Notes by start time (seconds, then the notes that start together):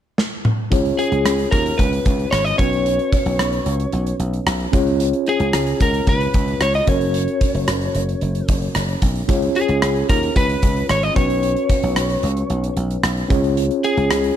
0.18 snare
0.45 mid tom
0.71 C#2 C#4 F4 G#4 C#5, kick, closed hi-hat
0.85 closed hi-hat
0.99 G#4, closed hi-hat
1.12 C#2, closed hi-hat
1.25 C#2, cross-stick, closed hi-hat
1.39 closed hi-hat
1.51 D#2 A#4, kick, closed hi-hat
1.66 closed hi-hat
1.78 C#2 B4, kick, closed hi-hat
1.93 closed hi-hat
2.05 C#2, kick, closed hi-hat
2.19 closed hi-hat
2.31 G#1 C#5, cross-stick, closed hi-hat
2.45 D#5, closed hi-hat
2.58 B1 C#4 F#4 B4 C#5, kick, closed hi-hat
2.73 closed hi-hat
2.86 closed hi-hat
2.99 closed hi-hat
3.12 kick, closed hi-hat
3.26 B1, closed hi-hat
3.39 B1, cross-stick, closed hi-hat
3.52 closed hi-hat
3.66 C#2, closed hi-hat
3.80 closed hi-hat
3.92 B1, closed hi-hat
4.07 closed hi-hat
4.19 B1, closed hi-hat
4.33 closed hi-hat
4.46 B1, cross-stick, closed hi-hat
4.60 closed hi-hat
4.72 C#2 C#4 F4 G#4 C#5, kick, closed hi-hat
4.87 closed hi-hat
5.00 closed hi-hat
5.13 closed hi-hat
5.27 G#4, closed hi-hat
5.40 C#2, closed hi-hat
5.53 C#2, cross-stick, closed hi-hat
5.67 closed hi-hat
5.80 C#2 A#4, kick, closed hi-hat
5.94 closed hi-hat
6.07 C#2 B4, kick, closed hi-hat
6.21 closed hi-hat
6.34 C#2, kick, closed hi-hat
6.48 closed hi-hat
6.60 C#2 C#5, cross-stick, closed hi-hat
6.74 D#5, closed hi-hat
6.87 F#1 C#4 F#4 A#4 C#5, kick, closed hi-hat
7.01 closed hi-hat
7.14 closed hi-hat
7.28 closed hi-hat
7.41 kick, closed hi-hat
7.54 F#1, closed hi-hat
7.68 F#1, cross-stick, closed hi-hat
7.81 closed hi-hat
7.95 F#1, closed hi-hat
8.09 closed hi-hat
8.21 F#1, closed hi-hat
8.35 closed hi-hat
8.48 F#1, kick, closed hi-hat
8.62 closed hi-hat
8.75 F#1, cross-stick, closed hi-hat
8.89 closed hi-hat
9.02 B1, kick, closed hi-hat
9.16 closed hi-hat
9.28 C#2 C#4 F4 G#4 C#5, kick, closed hi-hat
9.42 closed hi-hat
9.55 G#4, closed hi-hat
9.68 C#2, closed hi-hat
9.82 C#2, cross-stick, closed hi-hat
9.96 closed hi-hat
10.09 D#2 A#4, kick, closed hi-hat
10.23 closed hi-hat
10.36 C#2 B4, kick, closed hi-hat
10.49 closed hi-hat
10.62 C#2, kick, closed hi-hat
10.76 closed hi-hat
10.89 G#1 C#5, cross-stick, closed hi-hat
11.03 D#5, closed hi-hat
11.15 B1 C#4 F#4 B4 C#5, kick, closed hi-hat
11.30 closed hi-hat
11.43 closed hi-hat
11.56 closed hi-hat
11.69 kick, closed hi-hat
11.83 B1, closed hi-hat
11.96 B1, cross-stick, closed hi-hat
12.10 closed hi-hat
12.23 C#2, closed hi-hat
12.37 closed hi-hat
12.50 B1, closed hi-hat
12.64 closed hi-hat
12.77 B1, closed hi-hat
12.91 closed hi-hat
13.03 B1, cross-stick, closed hi-hat
13.17 closed hi-hat
13.29 C#2 C#4 F4 G#4 C#5, kick, closed hi-hat
13.44 closed hi-hat
13.57 closed hi-hat
13.71 closed hi-hat
13.84 G#4, closed hi-hat
13.97 C#2, closed hi-hat
14.11 C#2, cross-stick, closed hi-hat
14.24 closed hi-hat